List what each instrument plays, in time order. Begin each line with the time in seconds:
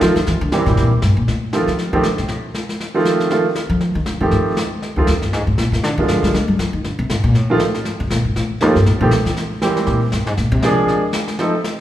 0.01 grand piano D#3 F3 A3 C4 F4, upright bass F3, snare
0.16 upright bass D#3, snare
0.27 upright bass E3, brush sweep, snare
0.41 upright bass D3
0.52 upright bass C3, grand piano E3 G3 A#3 C4 G4, snare
0.66 upright bass B2, snare
0.77 upright bass A#2, brush sweep, snare
0.91 upright bass D2
1.02 upright bass G2, snare
1.17 upright bass A#2
1.28 upright bass A2, brush sweep, snare
1.53 grand piano D#3 F3 A3 C4 F4, snare
1.67 upright bass F3, snare
1.78 brush sweep, snare
1.93 grand piano D#3 F3 A3 C4 G4, upright bass D#3
2.03 upright bass D3, snare
2.18 upright bass C3, snare
2.28 upright bass A2, brush sweep, snare
2.54 snare
2.69 snare
2.80 brush sweep, snare
2.94 grand piano D#3 F3 A3 C4 F4
3.05 snare
3.20 snare
3.30 grand piano D#3 F3 A3 C4 F4, brush sweep, snare
3.55 snare
3.70 upright bass F3
3.81 brush sweep, snare
3.95 upright bass D#3
4.06 upright bass D3, snare
4.20 upright bass C3, grand piano D#3 F3 A3 C4 G4
4.31 upright bass A2, brush sweep, snare
4.57 snare
4.82 brush sweep, snare
4.96 upright bass D2, grand piano D#3 F3 A3 C4 F4
5.07 upright bass D#2, snare
5.22 upright bass G2, snare
5.33 upright bass G#2, brush sweep, snare
5.47 upright bass A2
5.58 upright bass A#2, snare
5.72 upright bass C3, snare
5.83 upright bass D3, brush sweep, snare
5.98 grand piano D3 F3 G#3 A#3 F4, upright bass D#3
6.08 upright bass F3, snare
6.23 upright bass G3, snare
6.34 upright bass G#3, brush sweep, snare
6.48 upright bass G3
6.59 upright bass F3, snare
6.73 upright bass D#3
6.84 upright bass D3, brush sweep, snare
6.99 upright bass C3
7.10 upright bass G#2, snare
7.24 upright bass A#2
7.35 upright bass A2, brush sweep, snare
7.50 grand piano D#3 F3 A3 C4 F4
7.59 snare
7.74 snare
7.85 brush sweep, snare
8.00 upright bass C3
8.10 upright bass A#2, snare
8.25 upright bass G#2
8.36 upright bass A2, brush sweep, snare
8.51 upright bass C2
8.61 upright bass D#2, grand piano D#3 F3 A3 C4 F4, snare
8.75 upright bass G2, snare
8.86 upright bass A2, brush sweep, snare
9.01 upright bass A#2, grand piano D#3 F3 A3 C4 G4
9.11 upright bass C3, snare
9.25 upright bass E3, snare
9.37 brush sweep, snare
9.61 grand piano E3 G3 A#3 C4 G4, snare
9.77 snare
9.86 upright bass A#2, brush sweep, snare
10.12 upright bass G2, snare
10.26 upright bass G#2, snare
10.37 upright bass A#2, brush sweep, snare
10.52 upright bass C3
10.62 grand piano F3 G#3 A#3 D4 G#4, snare
10.88 brush sweep, snare
11.13 snare
11.28 snare
11.39 grand piano F3 A3 C4 D#4 A4, brush sweep, snare
11.64 snare